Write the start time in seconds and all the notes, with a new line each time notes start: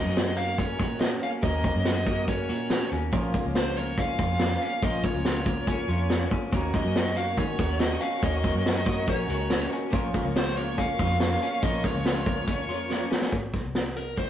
Already playing: D#3 A#3 D#5
0.04 F#2 A#3 C#4 F#4
0.17 F#4, snare, closed hi-hat
0.35 D#3 A#3 C#4 F#4 F5, closed hi-hat
0.58 C#4 C#5, kick, closed hi-hat
0.77 A#2 D#3 A#3 C#4 F#4, kick, closed hi-hat
0.98 D#3 A#3 C#4 F#4 D#5, snare, closed hi-hat
1.10 A#3 C#4 F#4
1.22 C#4 F5, closed hi-hat
1.41 D#2 D#3 A#3 C#4 F#4 D#5, kick, closed hi-hat
1.64 A#3, kick, closed hi-hat
1.73 F#2 A#3 C#4 F#4
1.85 F#4, snare, closed hi-hat
2.06 D#3 A#3 C#4 F#4, kick, closed hi-hat
2.28 C#4 C#5, kick, closed hi-hat
2.48 A#2 D#3 A#3 C#4 F#4, closed hi-hat
2.69 D#3 A#3 C#4 F#4, snare, closed hi-hat
2.79 A#3 C#4 F#4
2.92 D#2 C#4, closed hi-hat
3.11 A#1 A#2 F3 A#3 C#4 F4, kick, closed hi-hat
3.34 A#3, kick, closed hi-hat
3.43 C#2 A#3 C#4 F4
3.55 F4 C5, snare, closed hi-hat
3.76 F3 A#3 C#4 F4 C#5, closed hi-hat
3.97 C#4 F5, kick, closed hi-hat
4.18 F2 F3 A#3 C#4 F4, kick, closed hi-hat
4.39 F3 A#3 C#4 F4, snare, closed hi-hat
4.50 A#3 C#4 F4
4.61 C#4, closed hi-hat
4.82 A#1 A#2 F3 A#3 C#4 F4 D#5, kick, closed hi-hat
5.03 A#3 C#5, kick, closed hi-hat
5.14 C#2 A#3 C#4 F4
5.25 F4, snare, closed hi-hat
5.46 F3 A#3 C#4 F4, kick, closed hi-hat
5.67 C#4, kick, closed hi-hat
5.88 F2 F3 A#3 C#4 F4, closed hi-hat
6.09 F3 A#3 C#4 F4, snare, closed hi-hat
6.19 A#3 C#4 F4
6.31 C#4, kick, closed hi-hat
6.51 D#2 D#3 A#3 C#4 F#4 A#4 D#5 F#5 C#6, kick, closed hi-hat
6.74 A#3 D#5, kick, snare, closed hi-hat
6.83 F#2 A#3 C#4 F#4
6.96 F#4, snare, closed hi-hat
7.15 D#3 A#3 C#4 F#4 F5, closed hi-hat
7.37 D#3 C#4 C#5, kick, closed hi-hat
7.57 D#2 D#3 A#3 C#4 F#4, kick, closed hi-hat
7.79 D#3 A#3 C#4 F#4 D#5, snare, closed hi-hat
7.90 A#3 C#4 F#4
8.01 C#4 F5, closed hi-hat
8.22 D#2 D#3 A#3 C#4 F#4 D#5, kick, closed hi-hat
8.44 A#3, kick, snare, closed hi-hat
8.54 F#2 A#3 C#4 F#4
8.66 F#4, snare, closed hi-hat
8.85 D#3 A#3 C#4 F#4, kick, closed hi-hat
9.08 A#1 C#4 C#5, kick, closed hi-hat
9.27 C#2 D#3 A#3 C#4 F#4, closed hi-hat
9.48 D#3 A#3 C#4 F#4, snare, closed hi-hat
9.59 A#3 C#4 F#4
9.72 C#4, closed hi-hat
9.90 A#1 A#2 F3 A#3 C#4 F4 C#5 F5 C#6, kick, closed hi-hat
10.14 A#3, kick, snare, closed hi-hat
10.23 C#2 A#3 C#4 F4
10.36 F4 C5, snare, closed hi-hat
10.55 F3 A#3 C#4 F4 C#5, closed hi-hat
10.78 C#4 F5, kick, closed hi-hat
10.98 F2 F3 A#3 C#4 F4, kick, closed hi-hat
11.19 F3 A#3 F4, snare, closed hi-hat
11.30 A#3 C#4 F4
11.42 C#4, closed hi-hat
11.62 A#1 A#2 F3 A#3 C#4 F4 D#5, kick, closed hi-hat
11.84 A#3 C#5, kick, snare, closed hi-hat
11.93 C#2 A#3 C#4 F4
12.05 F4, snare, closed hi-hat
12.25 F3 A#3 C#4 F4, kick, closed hi-hat
12.47 C#4, kick, closed hi-hat
12.67 F2 F3 A#3 C#4 F4, closed hi-hat
12.89 F3 A#3 C#4 F4, snare
13.00 A#3 C#4 F4
13.10 C#4, snare
13.22 snare
13.32 G#1, kick, closed hi-hat
13.53 kick, snare, closed hi-hat
13.65 C2
13.75 snare, closed hi-hat
13.96 A#4, closed hi-hat
14.17 C5, kick, closed hi-hat